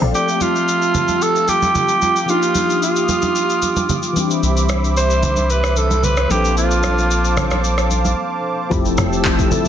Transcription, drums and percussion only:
0.15 shaker
0.28 shaker
0.41 high conga, shaker
0.56 shaker
0.68 shaker
0.82 shaker
0.95 high conga, low conga, shaker
1.08 high conga, shaker
1.22 shaker
1.36 shaker
1.48 high conga, shaker
1.62 high conga, shaker
1.75 high conga, low conga, shaker
1.88 shaker
2.02 high conga, shaker
2.16 shaker
2.29 shaker
2.42 shaker
2.55 high conga, shaker
2.70 shaker
2.82 shaker
2.96 shaker
3.09 high conga, shaker
3.22 high conga, shaker
3.36 shaker
3.50 shaker
3.62 high conga, shaker
3.76 high conga, shaker
3.89 high conga, low conga, shaker
4.03 shaker
4.16 high conga, shaker
4.31 shaker
4.43 shaker
4.57 shaker
4.69 cross-stick, high conga, shaker
4.84 shaker
4.97 shaker
5.10 shaker
5.23 high conga, low conga, shaker
5.36 high conga, shaker
5.50 shaker
5.64 cross-stick, shaker
5.76 high conga, shaker
5.90 high conga, shaker
6.03 high conga, low conga, shaker
6.17 cross-stick, shaker
6.30 high conga, shaker
6.45 shaker
6.57 shaker
6.71 shaker
6.83 cross-stick, high conga, shaker
6.98 shaker
7.11 shaker
7.25 shaker
7.37 cross-stick, high conga, low conga, shaker
7.50 cross-stick, high conga, shaker
7.64 shaker
7.78 cross-stick, shaker
7.91 high conga, shaker
8.05 high conga, shaker
8.71 kick, shaker
8.85 shaker
8.97 cross-stick, high conga, shaker
9.13 shaker
9.25 kick, clap, shaker
9.39 kick, shaker
9.51 high conga, low conga, shaker
9.65 shaker

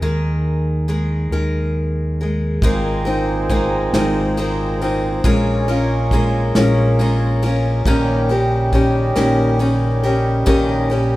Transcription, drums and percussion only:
2.62 kick, ride
3.06 ride
3.50 kick, ride
3.94 snare, ride
4.37 ride
4.81 ride
5.24 kick, ride
5.68 ride
6.11 kick, ride
6.55 snare, ride
6.99 ride
7.42 ride
7.85 kick, ride
8.29 ride
8.72 kick, ride
9.16 snare, ride
9.60 ride
10.03 ride
10.46 kick, ride
10.91 ride

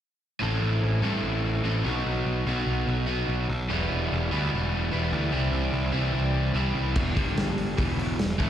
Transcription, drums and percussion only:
6.96 kick, crash
7.17 kick, open hi-hat
7.37 snare, open hi-hat
7.58 open hi-hat
7.78 kick, open hi-hat
7.99 open hi-hat
8.19 snare, open hi-hat
8.40 kick, open hi-hat

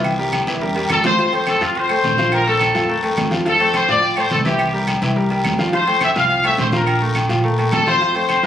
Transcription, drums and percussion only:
0.04 high conga, low agogo, long guiro, claves
0.19 high conga
0.33 high conga, low timbale, low agogo, short guiro, claves
0.47 high conga, low agogo, short guiro
0.61 high conga, high timbale, long guiro
0.75 high conga, low agogo
0.89 high conga, low timbale, low agogo, short guiro, claves
1.04 high conga, low timbale, short guiro
1.18 high conga, low agogo, long guiro
1.33 high conga, low agogo
1.47 high conga, low timbale, low agogo, short guiro, claves
1.61 high conga, short guiro
1.75 high conga, low agogo, long guiro
1.89 high conga, low agogo, claves
2.04 high conga, low timbale, short guiro
2.18 high conga, short guiro
2.32 high conga, low agogo, long guiro, claves
2.47 high conga
2.60 high conga, low timbale, low agogo, short guiro, claves
2.75 high conga, low agogo, short guiro
2.89 high conga, long guiro
3.03 high conga, low agogo
3.17 high conga, low timbale, low agogo, short guiro, claves
3.31 high conga, short guiro
3.45 high conga, low agogo, long guiro
3.60 high conga, low agogo
3.74 high conga, low timbale, low agogo, short guiro, claves
3.88 high conga, short guiro
4.02 high conga, low agogo, long guiro
4.17 high conga, low agogo, claves
4.31 high conga, low timbale, short guiro
4.45 high conga, short guiro
4.59 high conga, low agogo, long guiro, claves
4.74 high conga
4.87 high conga, low timbale, low agogo, short guiro, claves
5.02 high conga, low agogo, short guiro
5.16 high conga, long guiro
5.30 high conga, low agogo
5.44 high conga, low timbale, low agogo, short guiro, claves
5.58 high conga, short guiro
5.73 high conga, low agogo, long guiro
5.87 high conga, low agogo
6.01 high conga, low timbale, low agogo, short guiro, claves
6.16 high conga, short guiro
6.29 high conga, low agogo, long guiro
6.44 high conga, low agogo, claves
6.58 high conga, low timbale, short guiro
6.72 high conga, short guiro
6.86 high conga, low agogo, long guiro, claves
7.01 high conga
7.15 high conga, low timbale, low agogo, short guiro, claves
7.29 high conga, low agogo, short guiro
7.44 high conga, long guiro
7.58 high conga, low agogo
7.72 high conga, low timbale, low agogo, short guiro, claves
7.86 high conga, short guiro
8.01 high conga, low agogo, long guiro
8.15 high conga, low agogo
8.29 high conga, low timbale, low agogo, short guiro, claves
8.43 high conga, short guiro

